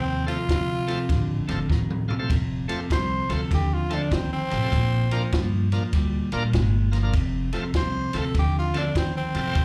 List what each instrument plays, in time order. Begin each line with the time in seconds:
Already playing: upright bass D#2, clean electric guitar F2 C3, tenor saxophone C4
0.26 clean electric guitar F2, tonewheel organ A3 C4 F4 A4, tenor saxophone F4, snare, ride
0.49 upright bass D2, clean electric guitar F2 C3, kick, snare, ride
0.87 clean electric guitar F2 C3, tonewheel organ A3 C4 F4 A4, snare, ride
1.09 upright bass A1, clean electric guitar F2 D3, kick, snare, ride
1.48 upright bass F1, clean electric guitar F2 D3, tonewheel organ A3 C4 F4 A4, snare, ride
1.69 upright bass A1, clean electric guitar F2 D#3, kick, snare
1.90 mid tom
2.08 clean electric guitar F2 C3, tonewheel organ F4 A4, floor tom
2.19 tonewheel organ A3 C4 F4 A4
2.30 upright bass F1, clean electric guitar F2 C3, kick, snare, ride
2.68 clean electric guitar F2 C3, tonewheel organ A3 C4 F4 A4, snare, ride
2.90 upright bass C2, clean electric guitar F2 C3, tenor saxophone C5, kick, snare, ride
3.29 upright bass D2, clean electric guitar F2 C3, tonewheel organ A3 C4 F4 A4, snare, ride
3.34 tenor saxophone A4
3.51 upright bass D#2, clean electric guitar F2 D3, tenor saxophone G4, kick, snare, ride
3.74 tenor saxophone F4
3.90 clean electric guitar F2 D3, tonewheel organ A3 C4 F4 A4, snare, ride
3.94 tenor saxophone D4
4.11 upright bass D2, clean electric guitar F2 D#3, tenor saxophone C4, kick, snare, ride
4.33 tenor saxophone C4
4.50 upright bass A1, clean electric guitar F2 C3, tonewheel organ F4 A4, snare, ride
4.62 tonewheel organ A3 C4 F4 A4
4.71 upright bass A#1, clean electric guitar A#2 F3, kick, snare, ride
5.11 clean electric guitar A#2 F3, tonewheel organ A#3 D4 F4 A#4, snare, ride
5.32 upright bass G2, clean electric guitar A#2 F3, kick, snare, ride
5.72 clean electric guitar A#2 F3, tonewheel organ A#3 D4 F4 A#4, snare, ride
5.93 upright bass D2, clean electric guitar A#2 G3, kick, snare, ride
6.32 upright bass A#1, clean electric guitar A#2 G3, tonewheel organ A#3 D4 F4 A#4, snare, ride
6.53 upright bass G1, clean electric guitar A#2 G#3, kick, snare, ride
6.91 clean electric guitar A#2 F3, tonewheel organ F4 A#4, snare, ride
7.03 tonewheel organ A#3 D4 F4 A#4
7.13 upright bass F1, clean electric guitar F2 C3, kick, snare, ride
7.53 clean electric guitar F2 C3, tonewheel organ A3 C4 F4 A4, snare, ride
7.74 upright bass C2, clean electric guitar F2 C3, tenor saxophone C5, kick, snare, ride
8.13 upright bass D2, clean electric guitar F2 C3, tonewheel organ A3 C4 F4 A4, snare, ride
8.18 tenor saxophone A4
8.35 upright bass D#2, clean electric guitar F2 D3, tenor saxophone G4, kick, snare, ride
8.59 tenor saxophone F4
8.74 clean electric guitar F2 D3, tonewheel organ A3 C4 F4 A4, snare, ride
8.78 tenor saxophone D4
8.95 upright bass D2, clean electric guitar F2 D#3, tenor saxophone C4, kick, snare, ride
9.17 tenor saxophone C4
9.34 clean electric guitar F2 C3, upright bass F2, tonewheel organ F4 A4, snare, ride
9.46 tonewheel organ A3 C4 F4 C5
9.55 upright bass D#2, clean electric guitar F2 C3, kick, snare, ride